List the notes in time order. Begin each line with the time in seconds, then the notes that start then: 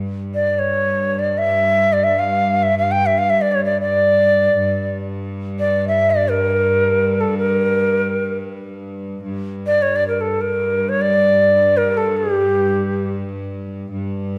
Already playing: G2
0.34 D5
0.59 C#5
1.19 D5
1.38 E5
1.93 D5
2.04 E5
2.19 F5
2.63 E5
2.78 F5
2.91 G5
3.06 E5
3.18 F5
3.30 E5
3.41 D5
3.52 C#5
3.65 D5
3.81 D5
4.55 G2
5.59 D5
5.88 E5
6.10 D5
6.29 A#4
7.21 A4
7.38 A#4
9.24 G2
9.66 D5
9.82 C#5
9.96 D5
10.08 A#4
10.21 A4
10.41 A#4
10.89 C#5
11.01 D5
11.77 A#4
11.97 A4
12.17 G4
13.90 G2